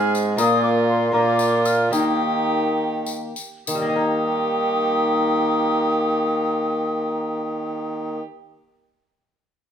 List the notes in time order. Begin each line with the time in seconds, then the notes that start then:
Already playing: G#2 G#3 C4 G#4 F6
0.15 tambourine
0.37 A#2 A#3 F4 A#4 D#6, tambourine
0.63 D6
0.89 C6
1.12 A#2 A#3 F4 A#4 D6
1.39 tambourine
1.65 F6, tambourine
1.91 D#3 A#3 G4 A#4 D#6, tambourine
3.06 tambourine
3.36 tambourine
3.67 D#3 A#3 G4 D#6, tambourine
3.75 G3
3.82 A#3
3.89 D#4
3.96 A#4